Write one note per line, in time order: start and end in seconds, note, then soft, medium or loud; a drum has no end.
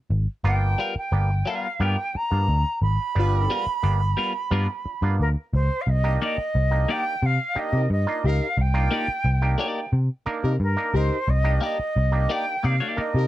0.10 0.26 G#1 loud
0.44 0.74 G1 loud
0.44 0.79 A#3 loud
0.44 0.80 B3 medium
0.44 0.80 D4 medium
0.44 0.80 F4 loud
0.44 0.93 G5 loud
0.78 0.93 G3 medium
0.78 0.94 B3 medium
0.78 0.94 F4 medium
0.78 0.94 A#4 medium
0.96 1.51 G5 medium
0.96 muted picked electric bass stroke medium
1.12 1.42 G1 medium
1.12 1.30 A#3 medium
1.12 1.30 B3 medium
1.12 1.30 D4 medium
1.12 1.30 G4 medium
1.46 1.66 G3 medium
1.46 1.67 B3 medium
1.46 1.55 D4 soft
1.46 1.55 F4 soft
1.46 1.67 F4 medium
1.46 1.67 A#4 medium
1.46 1.83 F5 medium
1.80 1.95 G2 loud
1.80 1.95 G3 medium
1.80 1.98 A#3 medium
1.80 1.98 B3 medium
1.80 1.95 B3 medium
1.80 1.98 D4 medium
1.80 1.96 F4 medium
1.80 1.98 G4 medium
1.80 1.96 A#4 medium
1.80 2.18 G5 loud
2.13 2.22 D4 soft
2.13 2.22 G4 soft
2.13 2.81 A#5 loud
2.13 muted picked electric bass stroke medium
2.31 2.47 G2 loud
2.31 2.57 A#3 medium
2.31 2.57 B3 medium
2.31 2.57 D4 medium
2.31 2.58 F4 medium
2.48 2.63 D2 medium
2.81 2.97 G#1 medium
2.81 2.90 D4 soft
2.81 2.90 F4 soft
2.81 5.15 B5 loud
3.15 3.46 G1 loud
3.15 3.51 G3 loud
3.15 3.51 B3 medium
3.15 3.51 D4 medium
3.15 3.60 D4 loud
3.15 3.60 F4 loud
3.15 3.51 G4 loud
3.15 3.60 B4 loud
3.50 3.64 G3 medium
3.50 3.64 B3 medium
3.50 3.65 F4 medium
3.50 3.65 A#4 medium
3.67 muted picked electric bass stroke soft
3.83 4.13 G1 loud
3.83 4.01 A#3 medium
3.83 4.01 B3 medium
3.83 4.01 D4 medium
3.83 4.01 G4 loud
4.17 4.32 G3 medium
4.17 4.32 B3 medium
4.17 4.26 D4 soft
4.17 4.32 F4 medium
4.17 4.26 G4 soft
4.17 4.32 A#4 medium
4.51 4.66 G2 loud
4.51 4.66 G3 medium
4.51 4.69 A#3 medium
4.51 4.69 B3 medium
4.51 4.66 B3 medium
4.51 4.69 D4 medium
4.51 4.69 F4 loud
4.51 4.67 F4 loud
4.51 4.67 A#4 medium
4.85 4.93 D4 soft
4.85 4.94 F4 soft
4.85 muted picked electric bass stroke soft
5.02 5.17 G2 medium
5.02 5.29 A#3 medium
5.02 5.29 B3 medium
5.02 5.29 D4 medium
5.02 5.29 F4 medium
5.20 5.34 D2 loud
5.20 5.29 A#4 medium
5.53 5.68 C#2 loud
5.53 5.61 D4 soft
5.53 5.62 G4 soft
5.53 5.83 C5 loud
5.81 5.91 F5 medium
5.87 6.17 C2 loud
5.87 6.22 D#5 loud
6.04 6.39 A#3 loud
6.04 6.39 D4 medium
6.04 6.39 D#4 medium
6.04 6.39 G4 loud
6.22 6.36 A#3 medium
6.22 6.36 D#4 loud
6.22 6.36 G4 medium
6.22 6.36 D5 medium
6.22 6.93 D#5 loud
6.38 muted picked electric bass stroke soft
6.55 6.85 C2 medium
6.71 7.15 A#3 medium
6.71 7.15 D4 medium
6.71 7.15 D#4 medium
6.71 7.15 G4 medium
6.89 7.03 A#3 medium
6.89 7.03 D#4 medium
6.89 7.04 G4 medium
6.89 7.04 D5 loud
6.89 7.27 G5 loud
7.23 7.37 C3 loud
7.23 7.60 F5 loud
7.55 7.82 A#3 medium
7.55 7.82 D4 medium
7.55 7.82 D#4 medium
7.55 7.82 G4 loud
7.55 7.91 D#5 loud
7.55 muted picked electric bass stroke soft
7.73 7.88 C3 medium
7.73 7.85 D#4 medium
7.73 7.86 G4 medium
7.73 7.85 A#4 medium
7.90 8.05 G2 loud
7.90 8.28 D#5 loud
8.07 8.24 A#3 medium
8.07 8.24 D4 medium
8.07 8.24 D#4 medium
8.07 8.24 F4 medium
8.24 8.39 C#2 loud
8.24 8.46 D#4 loud
8.24 8.47 G4 loud
8.24 8.47 A#4 loud
8.24 8.62 F5 loud
8.40 8.49 D#4 soft
8.40 8.49 G4 soft
8.58 8.87 C2 loud
8.58 9.95 G5 loud
8.74 9.09 A#3 medium
8.74 9.09 D4 medium
8.74 9.09 D#4 medium
8.74 9.09 F4 loud
8.91 9.06 A#3 medium
8.91 9.06 D#4 loud
8.91 9.06 G4 medium
8.91 9.07 D5 medium
9.08 muted picked electric bass stroke medium
9.25 9.55 C2 loud
9.42 9.86 A#3 loud
9.42 9.86 D4 medium
9.42 9.86 D#4 medium
9.42 9.86 G4 loud
9.58 9.79 A#3 medium
9.58 9.79 D#4 loud
9.58 9.79 G4 medium
9.58 9.80 D5 loud
9.93 10.08 C3 loud
10.26 10.53 A#3 loud
10.26 10.53 D4 medium
10.26 10.53 D#4 medium
10.26 10.53 A#4 loud
10.26 muted picked electric bass stroke soft
10.44 10.59 C3 medium
10.44 10.55 D#4 medium
10.44 10.55 G4 medium
10.44 10.54 A#4 medium
10.60 10.75 G2 loud
10.60 10.97 A#4 medium
10.77 10.95 A#3 medium
10.77 10.95 D4 medium
10.77 10.95 D#4 medium
10.77 10.95 A#4 medium
10.94 11.09 C#2 medium
10.94 11.16 D#4 loud
10.94 11.16 G4 loud
10.94 11.16 A#4 loud
10.94 11.31 C5 loud
11.11 11.19 D#4 soft
11.11 11.20 G4 soft
11.28 11.58 C2 loud
11.28 11.63 D#5 loud
11.44 11.80 A#3 medium
11.44 11.80 D4 medium
11.44 11.80 D#4 medium
11.44 11.80 G4 loud
11.61 11.76 A#3 medium
11.61 11.76 D#4 loud
11.61 11.77 G4 medium
11.61 11.77 D5 medium
11.61 12.33 D#5 loud
11.79 muted picked electric bass stroke medium
11.96 12.26 C2 loud
12.12 12.56 A#3 medium
12.12 12.56 D4 medium
12.12 12.56 D#4 medium
12.12 12.56 G4 medium
12.29 12.44 A#3 medium
12.29 12.44 D#4 medium
12.29 12.45 G4 medium
12.29 12.45 D5 medium
12.29 12.67 G5 loud
12.63 12.79 C3 loud
12.63 12.75 A#3 medium
12.63 12.75 D#4 medium
12.63 12.75 G4 medium
12.63 12.75 D5 medium
12.63 12.98 F5 loud
12.80 13.01 A#3 medium
12.80 13.01 D#4 medium
12.80 13.01 G4 medium
12.80 13.00 D5 medium
12.96 13.23 A#3 medium
12.96 13.23 D4 medium
12.96 13.23 D#4 medium
12.96 13.23 A#4 loud
12.96 13.27 D#5 medium
12.96 muted picked electric bass stroke medium
13.14 13.27 C3 loud
13.14 13.25 D#4 medium
13.14 13.26 G4 medium
13.14 13.26 A#4 loud